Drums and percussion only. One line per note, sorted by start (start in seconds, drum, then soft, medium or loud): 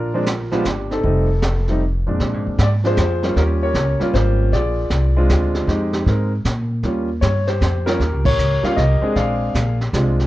0.26 snare medium
0.26 hi-hat pedal medium
0.52 snare soft
0.65 snare medium
0.65 hi-hat pedal soft
0.91 snare soft
1.04 brush sweep soft
1.04 kick soft
1.42 snare medium
1.42 hi-hat pedal medium
1.67 snare soft
2.20 brush sweep soft
2.20 kick soft
2.20 snare soft
2.58 kick soft
2.58 snare medium
2.58 hi-hat pedal medium
2.84 snare soft
2.97 kick soft
2.97 snare medium
2.97 hi-hat pedal medium
3.23 snare soft
3.36 brush sweep medium
3.36 kick soft
3.36 snare soft
3.74 kick soft
3.74 snare medium
3.74 hi-hat pedal medium
4.00 snare soft
4.14 kick soft
4.14 snare soft
4.53 brush sweep soft
4.53 kick soft
4.53 snare soft
4.90 kick soft
4.90 snare medium
4.90 hi-hat pedal medium
5.29 kick soft
5.29 snare medium
5.29 hi-hat pedal medium
5.54 snare soft
5.68 brush sweep soft
5.68 kick soft
5.68 snare soft
5.93 snare medium
6.06 kick soft
6.06 snare soft
6.45 kick soft
6.45 snare medium
6.45 hi-hat pedal medium
6.83 brush sweep soft
6.83 kick soft
6.83 snare soft
7.22 kick soft
7.22 snare medium
7.22 hi-hat pedal medium
7.47 snare soft
7.61 kick soft
7.61 snare medium
7.61 hi-hat pedal medium
7.87 snare medium
8.00 brush sweep soft
8.00 kick soft
8.00 snare soft
8.25 kick medium
8.25 ride medium
8.38 hi-hat pedal medium
8.64 snare soft
8.77 kick soft
8.77 snare soft
9.16 brush sweep soft
9.16 kick soft
9.16 snare soft
9.55 kick soft
9.55 snare medium
9.55 hi-hat pedal medium
9.81 snare soft
9.93 kick soft
9.93 snare medium
9.93 hi-hat pedal soft
10.19 snare soft